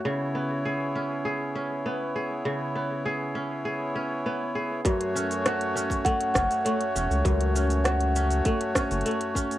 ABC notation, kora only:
X:1
M:4/4
L:1/8
Q:1/4=100
K:F#m
V:1 name="Kora"
C, B, G C G C B, G | C, B, G C G C B, G | F,, C F C A, C A, C | F,, C F C A, C A, C |]